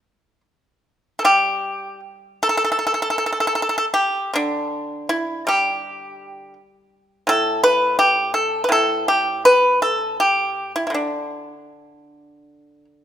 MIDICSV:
0, 0, Header, 1, 2, 480
1, 0, Start_track
1, 0, Tempo, 828729
1, 728, Time_signature, 4, 2, 24, 8
1, 728, Tempo, 771208
1, 2648, Tempo, 749064
1, 3608, Tempo, 714286
1, 5528, Tempo, 738916
1, 6488, Tempo, 771208
1, 8275, End_track
2, 0, Start_track
2, 0, Title_t, "Pipa"
2, 0, Program_c, 0, 105
2, 0, Note_on_c, 0, 62, 72
2, 235, Note_off_c, 0, 62, 0
2, 690, Note_on_c, 0, 69, 53
2, 721, Note_off_c, 0, 69, 0
2, 721, Note_on_c, 0, 55, 42
2, 723, Note_on_c, 0, 67, 70
2, 1188, Note_off_c, 0, 67, 0
2, 1457, Note_on_c, 0, 69, 73
2, 1489, Note_off_c, 0, 69, 0
2, 1497, Note_on_c, 0, 69, 54
2, 1540, Note_off_c, 0, 69, 0
2, 1548, Note_on_c, 0, 69, 59
2, 1584, Note_off_c, 0, 69, 0
2, 1592, Note_on_c, 0, 69, 50
2, 1629, Note_off_c, 0, 69, 0
2, 1637, Note_on_c, 0, 69, 52
2, 1673, Note_off_c, 0, 69, 0
2, 1681, Note_on_c, 0, 69, 46
2, 1722, Note_off_c, 0, 69, 0
2, 1730, Note_on_c, 0, 69, 52
2, 1768, Note_off_c, 0, 69, 0
2, 1776, Note_on_c, 0, 69, 45
2, 1818, Note_off_c, 0, 69, 0
2, 1826, Note_on_c, 0, 69, 52
2, 1869, Note_off_c, 0, 69, 0
2, 1876, Note_on_c, 0, 69, 45
2, 1918, Note_off_c, 0, 69, 0
2, 1925, Note_on_c, 0, 69, 51
2, 1968, Note_off_c, 0, 69, 0
2, 1976, Note_on_c, 0, 69, 48
2, 2008, Note_off_c, 0, 69, 0
2, 2015, Note_on_c, 0, 69, 49
2, 2056, Note_off_c, 0, 69, 0
2, 2063, Note_on_c, 0, 69, 49
2, 2099, Note_off_c, 0, 69, 0
2, 2107, Note_on_c, 0, 69, 55
2, 2149, Note_off_c, 0, 69, 0
2, 2157, Note_on_c, 0, 69, 52
2, 2170, Note_off_c, 0, 55, 0
2, 2193, Note_off_c, 0, 69, 0
2, 2201, Note_on_c, 0, 69, 58
2, 2236, Note_off_c, 0, 69, 0
2, 2244, Note_on_c, 0, 69, 53
2, 2289, Note_off_c, 0, 69, 0
2, 2297, Note_on_c, 0, 69, 56
2, 2339, Note_off_c, 0, 69, 0
2, 2396, Note_on_c, 0, 67, 67
2, 2624, Note_off_c, 0, 67, 0
2, 2644, Note_on_c, 0, 50, 46
2, 2657, Note_on_c, 0, 62, 68
2, 3112, Note_off_c, 0, 62, 0
2, 3129, Note_on_c, 0, 64, 68
2, 3354, Note_off_c, 0, 64, 0
2, 3369, Note_on_c, 0, 55, 52
2, 3380, Note_on_c, 0, 67, 63
2, 4072, Note_off_c, 0, 67, 0
2, 4093, Note_off_c, 0, 50, 0
2, 4566, Note_off_c, 0, 55, 0
2, 4569, Note_on_c, 0, 45, 52
2, 4582, Note_on_c, 0, 69, 80
2, 4800, Note_off_c, 0, 69, 0
2, 4814, Note_on_c, 0, 71, 81
2, 5033, Note_off_c, 0, 71, 0
2, 5051, Note_on_c, 0, 67, 76
2, 5270, Note_off_c, 0, 67, 0
2, 5288, Note_on_c, 0, 69, 65
2, 5471, Note_off_c, 0, 69, 0
2, 5490, Note_on_c, 0, 71, 54
2, 5513, Note_off_c, 0, 45, 0
2, 5521, Note_on_c, 0, 45, 50
2, 5531, Note_off_c, 0, 71, 0
2, 5542, Note_on_c, 0, 69, 72
2, 5757, Note_off_c, 0, 69, 0
2, 5778, Note_on_c, 0, 67, 66
2, 5995, Note_off_c, 0, 67, 0
2, 6018, Note_on_c, 0, 71, 74
2, 6236, Note_off_c, 0, 71, 0
2, 6258, Note_on_c, 0, 69, 64
2, 6477, Note_off_c, 0, 69, 0
2, 6503, Note_on_c, 0, 67, 69
2, 6823, Note_off_c, 0, 67, 0
2, 6850, Note_on_c, 0, 64, 52
2, 6912, Note_off_c, 0, 64, 0
2, 6919, Note_on_c, 0, 64, 36
2, 6940, Note_on_c, 0, 50, 36
2, 6955, Note_off_c, 0, 45, 0
2, 6960, Note_off_c, 0, 64, 0
2, 6967, Note_on_c, 0, 62, 48
2, 8150, Note_off_c, 0, 62, 0
2, 8275, Note_off_c, 0, 50, 0
2, 8275, End_track
0, 0, End_of_file